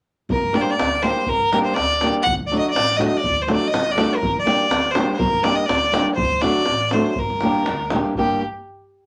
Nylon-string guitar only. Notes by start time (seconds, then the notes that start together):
0.53 G3 A#3 D4 G4
1.03 G3 A#3 D4 G4
1.52 G3 A#3 D4 G4
2.02 G3 A#3 D4 G4
2.51 F#3 A3 D4 F#4
2.98 F#3 A3 D4 F#4
3.48 F#3 A3 D4 F#4
3.95 F#3 A3 D4 F#4
4.45 G3 A#3 D4 G4
4.95 G3 A#3 D4 G4
5.44 G3 A#3 D4 G4
5.92 G3 A#3 D4 G4
6.42 F#3 A3 D4 F#4
6.93 F#3 A3 D4 F#4
7.42 G3 A#3 D4 G4
7.93 G3 A#3 D4 G4
8.18 G3 A#3 D4 G4